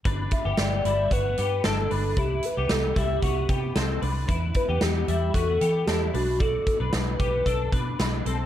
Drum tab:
HH |xxxxxxxo|xxxxxxxo|xxxxxxxo|xxxxxxxx|
SD |--o---o-|--o---o-|--o---o-|--o---o-|
BD |oo--o---|o--ooo--|oo--o---|oo-ooo--|